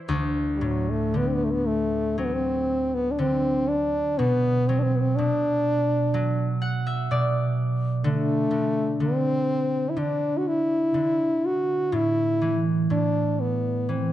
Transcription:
0.09 3.99 D2 soft
0.55 0.66 G3 soft
0.61 1.20 A2 soft
0.61 0.91 F#3 medium
0.90 1.19 A3 medium
1.14 3.17 D3 soft
1.14 1.29 B3 medium
1.28 1.35 C4 medium
1.34 1.46 B3 medium
1.44 1.53 A3 soft
1.51 1.69 B3 medium
1.67 2.19 A3 medium
2.18 3.24 F#3 soft
2.18 2.26 C4 medium
2.25 2.35 B3 medium
2.33 2.96 C4 medium
2.94 3.13 B3 medium
3.11 3.21 D4 medium
3.19 4.23 D3 soft
3.19 3.70 C4 medium
3.68 4.20 D4 medium
4.18 5.17 B2 medium
4.18 4.70 B3 medium
4.69 6.13 F#3 soft
4.69 4.81 C4 medium
4.79 4.97 C4 medium
4.79 4.84 D4 medium
4.96 5.02 B3 soft
5.00 5.18 C4 medium
5.16 7.10 B2 soft
5.16 6.61 D4 medium
6.14 8.09 F#3 medium
6.62 8.22 F#5 medium
6.87 8.59 E5 medium
7.11 8.09 B2 soft
7.11 8.96 D5 medium
8.04 8.50 D3 medium
8.04 8.96 A3 medium
8.51 8.99 D3 soft
9.00 9.95 D3 soft
9.00 9.91 C4 medium
9.89 10.00 E4 medium
9.97 10.93 D3 soft
9.97 10.39 D4 medium
10.38 10.49 F#4 medium
10.47 11.47 E4 medium
10.94 11.97 D3 soft
11.46 11.96 F#4 medium
11.92 12.89 A2 medium
11.92 12.65 E4 medium
12.42 13.88 E3 soft
12.90 14.12 A2 soft
12.90 13.42 D4 medium
13.40 13.91 B3 medium
13.89 14.12 E3 soft
13.89 14.12 C4 medium

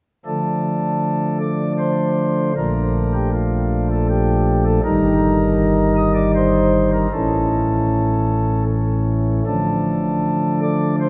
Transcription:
0.25 2.52 D3 medium
0.25 2.52 F3 soft
0.25 2.52 A3 soft
0.25 2.52 D4 soft
0.25 1.38 A4 medium
1.40 1.73 D5 medium
1.79 2.53 C5 medium
2.56 4.80 A#1 medium
2.56 4.80 A#2 medium
2.56 4.80 F3 soft
2.56 4.80 A3 soft
2.56 4.80 D4 soft
2.56 3.12 A#4 medium
3.14 3.30 G4 medium
3.33 3.88 F4 medium
3.92 4.07 A4 medium
4.10 4.64 G4 loud
4.65 4.81 A4 medium
4.83 7.07 G1 medium
4.83 7.07 G2 medium
4.83 7.07 D#3 soft
4.83 7.07 G3 soft
4.83 7.07 D#4 soft
4.83 5.93 A#4 loud
5.97 6.13 D#5 loud
6.15 6.31 D5 loud
6.35 6.91 C5 loud
6.93 7.09 A#4 medium
7.13 9.42 A1 medium
7.13 9.42 A2 soft
7.13 9.42 E3 soft
7.13 9.42 A3 soft
7.13 9.42 C#4 soft
7.13 8.63 A4 medium
9.46 11.09 D3 soft
9.46 11.09 F3 soft
9.46 11.09 A3 soft
9.46 11.09 D4 soft
9.46 10.59 A4 medium
10.62 10.96 D5 medium
11.01 11.09 C5 medium

